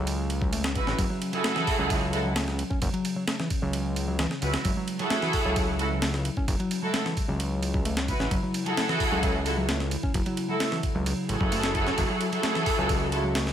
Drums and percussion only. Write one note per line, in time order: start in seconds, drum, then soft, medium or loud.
0.07 ride medium
0.30 ride medium
0.42 kick loud
0.53 ride medium
0.64 snare loud
0.75 kick loud
0.75 ride medium
0.87 snare soft
0.99 kick loud
0.99 ride medium
1.22 ride medium
1.33 ride soft
1.44 snare loud
1.44 ride medium
1.56 snare medium
1.67 kick medium
1.67 open hi-hat medium
1.90 kick loud
1.90 ride medium
2.13 ride medium
2.36 snare loud
2.36 ride medium
2.48 snare soft
2.59 ride medium
2.71 kick loud
2.82 kick loud
2.82 ride medium
2.94 ride soft
3.05 ride medium
3.28 snare loud
3.28 ride medium
3.40 snare medium
3.50 kick loud
3.50 ride medium
3.73 ride medium
3.96 ride medium
4.19 snare loud
4.19 ride medium
4.31 snare soft
4.42 ride medium
4.54 snare loud
4.54 ride medium
4.65 kick loud
4.65 ride medium
4.88 ride medium
4.99 ride soft
5.10 snare loud
5.10 ride loud
5.22 snare medium
5.33 kick loud
5.33 open hi-hat medium
5.56 kick loud
5.56 ride medium
5.79 ride medium
6.02 snare loud
6.02 ride medium
6.14 snare soft
6.25 ride medium
6.37 kick loud
6.48 kick loud
6.48 ride medium
6.60 ride soft
6.71 ride medium
6.94 snare loud
6.94 ride medium
7.06 snare medium
7.17 kick medium
7.17 ride medium
7.40 ride medium
7.63 ride medium
7.74 kick medium
7.85 ride medium
7.97 snare loud
8.08 kick loud
8.08 ride medium
8.20 snare soft
8.31 kick loud
8.31 ride medium
8.54 ride medium
8.66 ride soft
8.77 snare loud
8.77 ride medium
8.89 snare medium
9.00 kick loud
9.00 open hi-hat medium
9.23 kick loud
9.23 ride medium
9.46 ride medium
9.69 snare loud
9.69 ride medium
9.80 snare soft
9.91 ride medium
10.03 kick loud
10.14 kick loud
10.14 ride medium
10.26 ride soft
10.37 ride medium
10.60 snare loud
10.60 ride medium
10.72 snare medium
10.83 kick medium
10.83 ride medium
11.06 ride medium
11.29 ride medium
11.41 kick loud
11.52 ride medium
11.63 snare loud
11.75 kick loud
11.75 ride medium
11.87 snare soft
11.98 kick loud
11.98 ride medium
12.21 ride medium
12.33 ride soft
12.43 snare loud
12.43 ride medium
12.55 snare medium
12.66 kick loud
12.66 open hi-hat medium
12.89 kick loud
12.89 ride medium
13.12 ride medium
13.35 snare loud
13.35 ride medium
13.47 snare soft